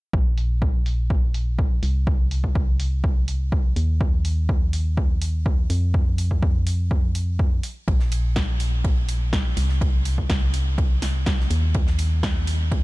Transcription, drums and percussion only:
0.13 kick
0.38 open hi-hat
0.62 kick
0.86 open hi-hat
1.10 kick
1.34 open hi-hat
1.59 kick
1.83 open hi-hat
2.07 kick
2.31 open hi-hat
2.44 kick
2.55 kick
2.80 open hi-hat
3.04 kick
3.28 open hi-hat
3.52 kick
3.76 open hi-hat
4.01 kick
4.25 open hi-hat
4.49 kick
4.73 open hi-hat
4.97 kick
5.22 open hi-hat
5.46 kick
5.70 open hi-hat
5.94 kick
6.18 open hi-hat
6.31 kick
6.43 kick
6.67 open hi-hat
6.91 kick
7.15 open hi-hat
7.39 kick
7.63 open hi-hat
7.88 kick, ride
8.00 snare
8.12 open hi-hat, ride
8.36 kick, snare, ride
8.60 open hi-hat, ride
8.84 kick, ride
9.09 open hi-hat, ride
9.33 kick, snare, ride
9.57 open hi-hat, ride
9.69 snare
9.81 kick, ride
10.05 open hi-hat, ride
10.18 kick
10.30 kick, snare, ride
10.54 open hi-hat, ride
10.78 kick, ride
11.02 snare, open hi-hat, ride
11.26 kick, snare, ride
11.40 snare
11.51 open hi-hat, ride
11.74 kick, ride
11.87 snare
11.98 open hi-hat, ride
12.23 kick, snare, ride
12.47 open hi-hat, ride
12.72 kick, ride

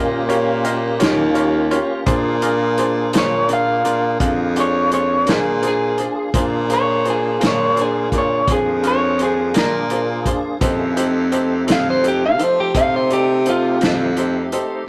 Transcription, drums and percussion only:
0.29 closed hi-hat
0.65 closed hi-hat
1.00 snare, closed hi-hat
1.35 closed hi-hat
1.71 closed hi-hat
2.06 kick, closed hi-hat
2.42 closed hi-hat
2.78 closed hi-hat
3.13 snare, closed hi-hat
3.49 closed hi-hat
3.85 closed hi-hat
4.20 kick, closed hi-hat
4.56 closed hi-hat
4.92 closed hi-hat
5.27 snare, closed hi-hat
5.63 closed hi-hat
5.98 closed hi-hat
6.34 kick, closed hi-hat
6.70 closed hi-hat
7.05 closed hi-hat
7.41 snare, closed hi-hat
7.77 closed hi-hat
8.12 kick, closed hi-hat
8.48 kick, closed hi-hat
8.83 closed hi-hat
9.19 closed hi-hat
9.54 snare, closed hi-hat
9.90 closed hi-hat
10.26 kick, closed hi-hat
10.61 kick, closed hi-hat
10.97 closed hi-hat
11.32 closed hi-hat
11.68 snare, closed hi-hat
12.04 closed hi-hat
12.39 closed hi-hat
12.75 kick, closed hi-hat
13.10 closed hi-hat
13.46 closed hi-hat
13.81 snare, closed hi-hat
14.17 closed hi-hat
14.52 closed hi-hat

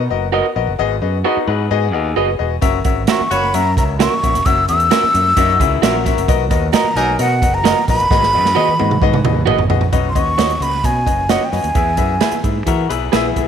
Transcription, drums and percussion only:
2.62 kick, closed hi-hat
2.85 kick, closed hi-hat
3.07 snare, closed hi-hat
3.31 closed hi-hat
3.54 closed hi-hat
3.77 kick, closed hi-hat
4.00 snare, closed hi-hat
4.23 kick, closed hi-hat
4.35 snare, closed hi-hat
4.46 kick, closed hi-hat
4.69 closed hi-hat
4.80 closed hi-hat
4.91 snare, closed hi-hat
5.03 snare
5.15 closed hi-hat
5.37 kick, closed hi-hat
5.60 kick, closed hi-hat
5.83 snare, closed hi-hat
6.06 kick, snare, closed hi-hat
6.18 closed hi-hat
6.28 kick, closed hi-hat
6.51 kick, closed hi-hat
6.73 snare, closed hi-hat
6.96 closed hi-hat
7.19 closed hi-hat
7.42 kick, closed hi-hat
7.65 snare, closed hi-hat
7.88 kick, snare, open hi-hat
8.00 closed hi-hat
8.11 kick, snare
8.23 snare
8.45 snare
8.57 high tom
8.79 high tom
8.91 mid tom
9.02 kick
9.13 mid tom
9.25 mid tom
9.47 mid tom
9.59 floor tom
9.70 floor tom
9.81 floor tom
9.93 kick, closed hi-hat
10.15 kick, closed hi-hat
10.39 snare, closed hi-hat
10.50 closed hi-hat
10.62 closed hi-hat
10.84 kick, closed hi-hat
11.07 kick, closed hi-hat
11.29 snare, closed hi-hat
11.53 snare, open hi-hat
11.64 closed hi-hat
11.75 kick, closed hi-hat
11.97 kick, closed hi-hat
12.21 snare, closed hi-hat
12.31 closed hi-hat
12.44 kick, closed hi-hat
12.67 kick, closed hi-hat
12.90 closed hi-hat
13.13 snare, closed hi-hat
13.36 kick, closed hi-hat

